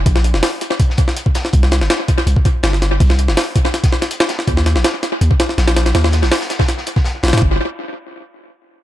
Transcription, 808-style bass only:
\new Staff \with { instrumentName = "808-style bass" } { \clef bass \time 4/4 \key ees \major \tempo 4 = 163 bes,,8. f,,16 r2. | c,8. g,,16 r4 c,16 r8. g,,4 | c,8. g,,16 r2. | ees,8. bes,,16 r4 ees,16 r8. bes,,4 |
ees,8. bes,,16 r2 r8 bes,,16 aes,16 | g,,8 r2. r8 | }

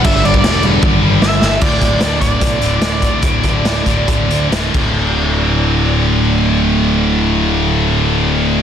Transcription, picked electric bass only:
\new Staff \with { instrumentName = "Picked electric bass" } { \clef bass \time 4/4 \key g \lydian \tempo 4 = 138 g,,8 g,,8 e,,4 g,,8 g,,8 g,,8 g,,8 | d,,8 d,,8 d,8 d,,8 b,,8 d,,8 d,,4 | d,,8 d,,8 d,,8 d,,8 d,,8 d,8 d,,8 d,,8~ | d,,1~ |
d,,1 | }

